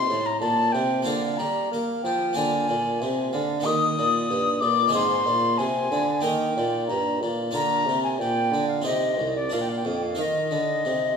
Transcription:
0.00 1.01 D#4 medium
0.00 1.01 G4 soft
0.00 1.02 C5 medium
0.00 0.28 C6 loud
0.08 0.40 A2 medium
0.08 0.39 A2 medium
0.26 0.40 A#5 medium
0.40 0.73 A#2 medium
0.40 0.71 A#2 medium
0.40 0.74 A5 loud
0.72 1.06 C3 medium
0.72 1.04 C3 medium
0.72 1.04 G5 loud
1.02 1.72 A#3 medium
1.02 2.31 F4 medium
1.02 2.31 A#4 medium
1.02 1.39 F5 medium
1.06 1.38 D3 medium
1.06 1.36 D3 medium
1.37 1.68 G3 medium
1.37 1.70 G3 medium
1.37 1.70 A#5 medium
1.71 2.03 A#3 medium
1.71 2.01 A#3 medium
2.03 2.35 F3 medium
2.03 2.33 F3 medium
2.03 2.37 G5 loud
2.33 2.68 D3 medium
2.33 2.65 D3 medium
2.33 3.59 A#3 medium
2.33 3.60 F4 medium
2.33 3.61 A#4 medium
2.33 3.31 G#5 loud
2.69 2.98 A#2 medium
2.69 3.03 A#2 medium
3.01 3.33 C3 medium
3.01 3.30 C3 medium
3.32 3.62 D3 medium
3.32 3.68 D3 medium
3.32 3.66 F5 medium
3.60 4.87 A#3 medium
3.60 4.88 D#4 medium
3.60 4.89 G4 medium
3.65 3.94 D#3 medium
3.65 3.98 D#3 medium
3.65 4.62 D#6 loud
3.98 4.29 A#2 medium
3.98 4.27 A#2 medium
4.30 4.64 G2 medium
4.30 4.59 G2 medium
4.61 4.94 A#2 medium
4.61 4.91 A#2 medium
4.61 4.93 D6 loud
4.88 5.22 G#3 medium
4.88 5.22 C4 medium
4.88 5.23 D#4 medium
4.93 5.23 G#2 medium
4.93 5.28 G#2 medium
4.93 6.18 G#4 medium
4.93 5.59 C6 loud
5.27 5.58 A#2 medium
5.27 5.55 A#2 medium
5.58 5.90 C3 medium
5.58 5.88 C3 medium
5.58 6.23 G#5 loud
5.91 6.25 D3 medium
5.91 6.20 D3 medium
6.21 6.56 D#3 medium
6.21 7.49 A#3 medium
6.21 7.49 D#4 medium
6.21 7.50 A#4 medium
6.21 6.87 G5 medium
6.25 6.53 D#3 medium
6.56 6.91 A#2 medium
6.56 6.86 A#2 medium
6.88 7.22 G2 medium
6.88 7.18 G2 medium
6.88 7.20 A#5 medium
7.21 7.53 A#2 medium
7.21 7.52 A#2 medium
7.51 7.87 D3 medium
7.51 8.79 A#3 medium
7.51 8.80 F4 medium
7.51 8.81 A#4 medium
7.51 7.99 A#5 loud
7.55 7.84 D3 medium
7.86 8.20 C3 medium
7.86 8.17 C3 medium
8.03 8.19 G#5 medium
8.18 8.50 A#2 medium
8.18 8.68 G5 loud
8.51 8.84 D3 medium
8.51 8.83 D3 medium
8.68 8.84 F5 medium
8.82 9.19 C3 medium
8.82 9.48 C4 medium
8.82 9.48 D#4 medium
8.82 9.49 G4 medium
8.82 9.34 D#5 medium
8.86 9.16 C3 medium
9.18 9.50 C2 medium
9.18 9.49 C2 medium
9.36 9.55 D5 medium
9.50 9.84 A#2 medium
9.50 9.82 A#2 medium
9.50 10.16 D4 medium
9.50 10.15 A#4 medium
9.50 9.63 F5 medium
9.61 9.71 G5 medium
9.69 9.79 F5 medium
9.78 9.88 G5 medium
9.85 10.18 F2 medium
9.85 10.15 F2 medium
9.85 9.97 F5 medium
9.95 10.05 G5 medium
10.03 10.22 F5 medium
10.15 10.49 D#3 medium
10.15 10.54 D#3 medium
10.15 11.17 D#4 soft
10.15 11.17 A#4 medium
10.21 11.17 D#5 loud
10.51 10.83 D3 medium
10.51 10.85 D3 medium
10.85 11.17 C3 medium

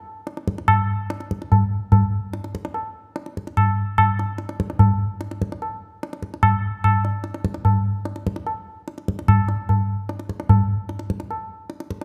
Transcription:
0.27 tabla te medium
0.37 tabla te medium
0.48 tabla ke medium
0.58 tabla te medium
0.68 tabla na medium
0.68 tabla ge medium
1.10 tabla te medium
1.20 tabla te medium
1.31 tabla ke soft
1.42 tabla te medium
1.52 tabla tin medium
1.52 tabla ge medium
1.92 tabla tin medium
1.92 tabla ge medium
2.33 tabla te medium
2.44 tabla te medium
2.55 tabla ke medium
2.65 tabla te medium
2.74 tabla tin medium
3.16 tabla te medium
3.26 tabla te medium
3.37 tabla ke medium
3.47 tabla te medium
3.57 tabla na medium
3.57 tabla ge medium
3.98 tabla na medium
3.98 tabla ge medium
4.19 tabla te medium
4.38 tabla te medium
4.49 tabla te medium
4.60 tabla ke medium
4.70 tabla te medium
4.79 tabla tin medium
4.79 tabla ge medium
5.21 tabla te medium
5.31 tabla te medium
5.42 tabla ke medium
5.52 tabla te medium
5.62 tabla tin medium
6.03 tabla te medium
6.13 tabla te medium
6.22 tabla ke medium
6.34 tabla te medium
6.43 tabla na medium
6.43 tabla ge medium
6.84 tabla na medium
6.84 tabla ge medium
7.05 tabla te medium
7.24 tabla te medium
7.34 tabla te medium
7.45 tabla ke medium
7.54 tabla te medium
7.65 tabla tin medium
7.65 tabla ge medium
8.05 tabla te medium
8.16 tabla te medium
8.27 tabla ke medium
8.36 tabla te medium
8.47 tabla tin medium
8.88 tabla te medium
8.98 tabla te medium
9.08 tabla ke medium
9.19 tabla te medium
9.28 tabla na medium
9.28 tabla ge medium
9.49 tabla te medium
9.69 tabla tin medium
9.69 tabla ge medium
10.09 tabla te medium
10.19 tabla te medium
10.29 tabla ke medium
10.40 tabla te medium
10.49 tabla tin loud
10.49 tabla ge medium
10.89 tabla te medium
10.99 tabla te medium
11.10 tabla ke medium
11.20 tabla te medium
11.31 tabla tin medium
11.70 tabla te medium
11.80 tabla te medium
11.91 tabla ke medium
12.01 tabla te medium

